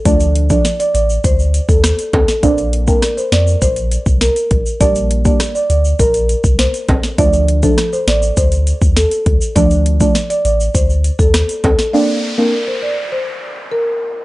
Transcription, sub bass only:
\new Staff \with { instrumentName = "Sub bass" } { \clef bass \time 4/4 \key d \phrygian \tempo 4 = 101 d,4 r8 a,,8 d,8. ees,8 r16 d,16 r16 | bes,,4 r8 f,8 bes,,8. c,8 r16 bes,,16 r16 | bes,,4 r8 d,8 bes,,8. c,8 r16 bes,,16 r16 | d,4 r8 a,,8 d,8. ees,8 r16 d,16 r16 |
d,4 r8 a,,8 d,8. ees,8 r16 d,16 r16 | r1 | }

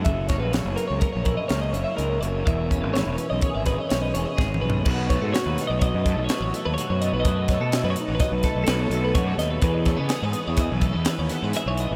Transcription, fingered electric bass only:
\new Staff \with { instrumentName = "Fingered electric bass" } { \clef bass \time 5/4 \key b \mixolydian \tempo 4 = 125 fis,,8. ais,,8 fis,,16 r16 cis,16 r16 ais,,8 r16 cis,8 fis,,16 r16 cis,8 fis,,8 | e,,8. gis,,8 e,,16 r16 b,,16 r16 gis,,8 r16 b,,8 e,,16 r16 gis,,8 b,,8 | b,,8. gis,16 r16 dis,16 r16 b,,8 fis,8 b,,16 r16 a,,16 r16 dis,16 r16 fis,8 b,,16 | fis,8. b,8 fis,16 r16 a,,16 r16 b,,16 r16 b,,16 b,,8 b,,8 fis,8 dis,8 |
e,8. cis16 r16 gis,16 r16 e,8 b,,8 e,16 r16 dis,16 r16 gis,16 r16 b,,8 a,,16 | }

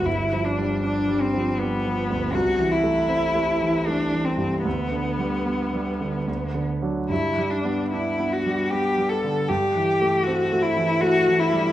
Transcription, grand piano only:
\new Staff \with { instrumentName = "Grand piano" } { \clef bass \time 3/4 \key g \major \tempo 4 = 78 \tuplet 3/2 { g,,8 f8 g8 d'8 g8 f8 g8 f8 d,8 } | \tuplet 3/2 { c,8 e8 a8 c'8 a8 e8 a8 e8 g,8 } | \tuplet 3/2 { d,8 d8 g8 b8 g8 d8 d,8 d8 <fis d'>8 } | \tuplet 3/2 { g,8 g8 b8 d'8 b8 g8 b8 g8 d8 } |
\tuplet 3/2 { g,8 e8 a8 c'8 a8 e8 a8 e8 g8 } | }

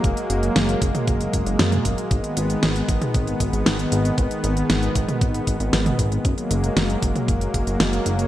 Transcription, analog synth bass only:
\new Staff \with { instrumentName = "Analog synth bass" } { \clef bass \time 4/4 \key gis \minor \tempo 4 = 116 fis,,16 r16 fis,,8 fis,,8 fis,,16 r16 fis,,8 fis,,16 fis,,16 fis,8 fis,,16 r16 | gis,,16 r16 gis,,8 gis,,8 gis,,16 r16 gis,,8 gis,,16 gis,,16 gis,,8 gis,,8 | gis,,16 r16 gis,,8 gis,,8 gis,,16 r16 gis,,8 gis,,16 gis,,16 gis,,8 gis,,8 | fis,,16 r16 fis,,8 fis,,8 fis,,16 r16 fis,,8 fis,,16 fis,,16 fis,,8 fis,,8 | }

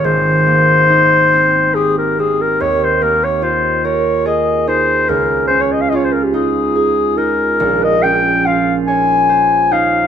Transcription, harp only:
\new Staff \with { instrumentName = "Harp" } { \time 6/8 \key c \phrygian \tempo 4. = 48 <aes,, bes c' ees'>8 bes8 ees'8 c'8 g'8 c'8 | ees,8 bes8 f'8 bes'8 aes'8 ees'8 | des,8 des'8 f'8 ees'8 aes'8 ees'8 | bes,,8 des'8 f'8 des''8 c''8 ees'8 | }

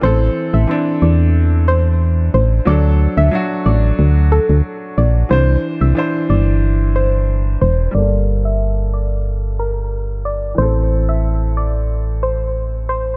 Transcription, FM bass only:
\new Staff \with { instrumentName = "FM bass" } { \clef bass \time 4/4 \key a \phrygian \tempo 4 = 91 a,,8 r16 a,,16 r8 e,2 a,,8 | d,8. d,16 r8 a,,8 d,8. d,16 r8 bes,,8 | c,8 r16 c,16 r8 g,,2 e,,8 | g,,1 |
a,,1 | }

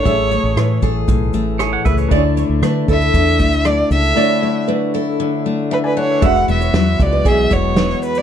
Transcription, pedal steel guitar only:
\new Staff \with { instrumentName = "Pedal steel guitar" } { \time 4/4 \key e \mixolydian \tempo 4 = 117 r2. <gis' cis''>16 <cis'' fis''>16 <b' e''>16 <gis' cis''>16~ | <gis' cis''>16 r2. r8. | r1 | r1 | }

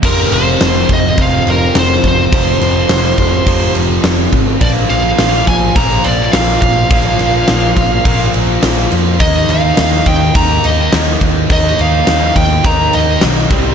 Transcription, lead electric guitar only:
\new Staff \with { instrumentName = "Lead electric guitar" } { \time 4/4 \key ees \major \tempo 4 = 105 bes'8 c''4 ees''8 f''8 bes'8 c''8 c''8~ | c''2~ c''8 r4. | d''8 f''4 aes''8 bes''8 d''8 f''8 f''8~ | f''2~ f''8 r4. |
ees''8 f''4 g''8 bes''8 ees''8 r4 | ees''8 f''4 g''8 bes''8 ees''8 r4 | }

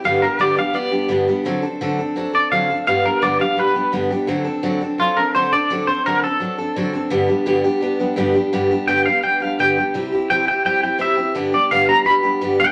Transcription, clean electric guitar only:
\new Staff \with { instrumentName = "Clean electric guitar" } { \time 4/4 \key g \major \tempo 4 = 170 f''8 bes'8 d''8 f''8 d''4 r4 | r2 r8 d''8 f''4 | f''8 bes'8 d''8 f''8 b'4 r4 | r2 f'8 bes'8 c''8 d''8~ |
d''8 c''8 bes'8 a'2~ a'8~ | a'8 r2. r8 | r4 g''8 f''8 g''8 f''8 g''4 | r4 g''8 g''8 g''8 g''8 e''4 |
r8 d''8 f''8 bes''8 b''4 r8 g''8 | }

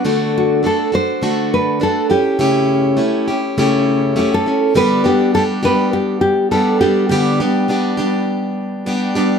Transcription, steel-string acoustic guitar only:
\new Staff \with { instrumentName = "Steel-string acoustic guitar" } { \time 4/4 \key g \major \tempo 4 = 102 <d a d' fis' a'>4 <a d' fis' a'>8 <d' fis' a'>8 <d a d' fis' a'>4 <a d' fis' a'>8 <cis' e' g'>8 | <cis a cis' e' g'>4 <a cis' e' g'>8 <cis' e' g'>8 <cis a cis' e' g'>4 <a cis' e' g'>8 <cis' e' g'>8 | <g, d g b d' g'>8 <g b d' g'>8 <g b d' g'>8 <g b d' g'>4. <g b d' g'>8 <g b d' g'>8 | <g, d g b d' g'>8 <g b d' g'>8 <g b d' g'>8 <g b d' g'>4. <g b d' g'>8 <g b d' g'>8 | }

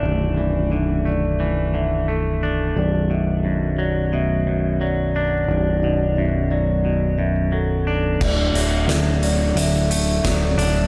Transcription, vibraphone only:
\new Staff \with { instrumentName = "Vibraphone" } { \time 4/4 \key d \major \tempo 4 = 88 d''8 d''8 e''8 d''4 e''8 a'4 | d''8 e''4 d''8 e''4 d''8 d''8~ | d''8 d''8 e''8 d''4 e''8 a'4 | d''8 e''4 d''8 e''4 d''8 d''8 | }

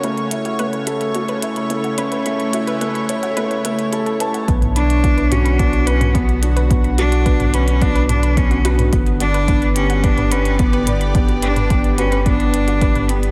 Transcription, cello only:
\new Staff \with { instrumentName = "Cello" } { \time 4/4 \key b \minor \tempo 4 = 108 r1 | r1 | r8 d'4 cis'8 d'8 cis'8 b8. r16 | r8 d'4 cis'8 d'8 d'8 cis'8. r16 |
r8 d'4 cis'8 d'8 cis'8 b8. r16 | r8 d'4 cis'8 d'4. b8 | }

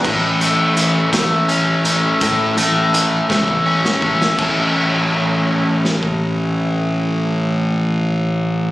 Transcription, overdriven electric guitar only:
\new Staff \with { instrumentName = "Overdriven electric guitar" } { \time 6/8 \key a \major \tempo 4. = 55 a,8 a8 e8 a8 cis'8 a8 | a,8 a8 e8 a8 cis'8 a8 | <a, a cis' e' a'>2.~ | <a, a cis' e' a'>2. | }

